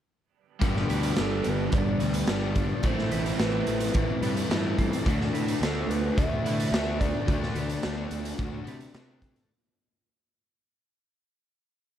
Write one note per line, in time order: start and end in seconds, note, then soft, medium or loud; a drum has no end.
0.61 0.83 G1 medium
0.61 1.45 G2 medium
0.61 1.16 D3 medium
0.61 1.44 G3 medium
0.61 1.17 G3 medium
0.61 1.19 B3 medium
0.61 1.19 D4 loud
0.61 kick loud
0.61 closed hi-hat medium
0.76 snare soft
0.90 1.11 D2 medium
0.90 1.99 B4 medium
0.90 closed hi-hat medium
1.03 closed hi-hat medium
1.16 1.40 G1 medium
1.16 1.72 D3 medium
1.16 1.72 G3 medium
1.16 1.73 B3 medium
1.16 2.56 D4 medium
1.16 1.73 D4 medium
1.16 snare loud
1.16 closed hi-hat medium
1.21 1.51 A4 medium
1.44 1.67 G1 medium
1.44 2.83 G3 medium
1.44 closed hi-hat medium
1.49 1.76 B4 medium
1.71 1.94 G1 medium
1.71 2.56 G2 medium
1.71 2.26 D3 medium
1.71 2.27 G3 medium
1.71 2.29 B3 medium
1.71 2.29 D4 medium
1.71 2.28 G4 medium
1.71 2.29 D5 loud
1.71 kick loud
1.71 closed hi-hat medium
1.99 2.22 D2 medium
1.99 2.26 G2 medium
1.99 2.27 D3 medium
1.99 2.26 G3 medium
1.99 2.87 B4 medium
1.99 closed hi-hat medium
2.14 closed hi-hat medium
2.27 2.71 G1 medium
2.27 2.82 G2 medium
2.27 2.82 D3 medium
2.27 2.82 G3 medium
2.27 2.84 B3 medium
2.27 2.83 D4 medium
2.27 2.84 G4 medium
2.27 2.88 D5 loud
2.27 snare loud
2.27 closed hi-hat medium
2.55 2.84 D4 medium
2.55 kick medium
2.55 closed hi-hat medium
2.83 3.05 A1 medium
2.83 3.67 A2 medium
2.83 3.38 E3 medium
2.83 3.67 A3 medium
2.83 3.40 A3 medium
2.83 3.40 C4 loud
2.83 3.41 E4 medium
2.83 3.42 C5 loud
2.83 kick loud
2.83 closed hi-hat medium
2.98 snare soft
3.11 3.33 A1 medium
3.11 4.22 B4 medium
3.11 closed hi-hat medium
3.26 closed hi-hat medium
3.39 3.61 A1 medium
3.39 3.94 E3 medium
3.39 3.95 A3 medium
3.39 4.78 C4 medium
3.39 3.95 C4 medium
3.39 3.96 E4 medium
3.39 4.78 B4 medium
3.39 snare loud
3.39 closed hi-hat medium
3.67 3.89 A1 medium
3.67 5.06 A3 medium
3.67 closed hi-hat medium
3.80 closed hi-hat medium
3.94 4.16 A1 medium
3.94 4.77 A2 medium
3.94 4.48 E3 medium
3.94 4.50 A3 medium
3.94 4.50 C4 medium
3.94 4.49 E4 medium
3.94 4.51 E4 loud
3.94 kick loud
3.94 closed hi-hat medium
4.22 4.43 G2 medium
4.22 4.49 A2 medium
4.22 4.49 E3 medium
4.22 4.52 A3 medium
4.22 5.09 B4 medium
4.22 closed hi-hat medium
4.37 closed hi-hat medium
4.49 4.92 G2 medium
4.49 5.04 A2 medium
4.49 5.03 E3 medium
4.49 5.05 A3 medium
4.49 5.05 C4 medium
4.49 5.06 E4 medium
4.49 5.05 E4 medium
4.49 snare loud
4.49 closed hi-hat medium
4.78 5.06 C4 medium
4.78 kick medium
4.78 closed hi-hat medium
4.93 closed hi-hat medium
5.04 5.27 D2 medium
5.04 5.61 D3 medium
5.04 5.61 A3 loud
5.04 5.89 A3 medium
5.04 5.62 D4 loud
5.04 5.63 F#4 loud
5.04 kick loud
5.04 closed hi-hat medium
5.21 snare soft
5.32 5.54 A2 medium
5.32 6.46 B4 medium
5.32 closed hi-hat medium
5.48 closed hi-hat medium
5.61 5.82 D2 medium
5.61 6.15 D3 medium
5.61 6.16 A3 medium
5.61 7.00 D4 medium
5.61 6.17 D4 medium
5.61 6.18 F#4 medium
5.61 5.91 A4 medium
5.61 snare loud
5.61 closed hi-hat medium
5.88 6.09 D2 medium
5.88 7.29 A3 medium
5.88 6.18 B4 medium
5.88 closed hi-hat medium
6.16 6.38 D2 medium
6.16 6.71 D3 medium
6.16 6.72 A3 medium
6.16 6.73 D4 medium
6.16 6.72 F#4 medium
6.16 6.74 F#4 medium
6.16 7.01 E5 loud
6.16 kick loud
6.16 closed hi-hat medium
6.44 6.65 A2 medium
6.44 6.71 D3 medium
6.44 6.72 A3 medium
6.44 6.73 D4 medium
6.44 7.55 B4 medium
6.44 closed hi-hat medium
6.60 closed hi-hat medium
6.72 7.14 D2 medium
6.72 7.27 D3 medium
6.72 7.27 A3 medium
6.72 7.28 D4 medium
6.72 8.11 F#4 medium
6.72 7.29 F#4 medium
6.72 snare loud
6.72 closed hi-hat medium
7.00 7.83 D4 medium
7.00 8.94 D5 loud
7.00 kick medium
7.00 closed hi-hat medium
7.28 7.49 D2 medium
7.28 7.82 D3 loud
7.28 7.83 A3 medium
7.28 8.11 A3 medium
7.28 7.84 D4 loud
7.28 7.84 F#4 loud
7.28 kick loud
7.28 closed hi-hat medium
7.43 snare soft
7.55 7.76 D2 medium
7.55 8.67 B4 medium
7.55 closed hi-hat medium
7.69 closed hi-hat medium
7.83 8.06 D2 medium
7.83 8.38 D3 medium
7.83 8.39 A3 medium
7.83 9.23 D4 medium
7.83 8.40 D4 medium
7.83 8.40 F#4 medium
7.83 snare loud
7.83 closed hi-hat medium
8.11 8.32 D2 medium
8.11 9.51 A3 medium
8.11 closed hi-hat medium
8.25 closed hi-hat medium
8.38 8.60 D2 medium
8.38 8.93 D3 medium
8.38 8.94 A3 medium
8.38 8.95 D4 medium
8.38 8.94 F#4 medium
8.38 8.96 F#4 medium
8.38 kick loud
8.38 closed hi-hat medium
8.65 8.88 C3 medium
8.65 8.93 D3 medium
8.65 8.93 A3 medium
8.65 8.92 D4 medium
8.65 9.51 B4 medium
8.65 closed hi-hat medium
8.80 closed hi-hat medium
8.94 9.37 C3 medium
8.94 9.48 D3 medium
8.94 9.49 A3 medium
8.94 9.49 D4 medium
8.94 9.50 F#4 medium
8.94 snare loud
8.94 closed hi-hat medium
9.22 9.51 D4 medium
9.22 kick medium
9.22 closed hi-hat medium
9.36 closed hi-hat medium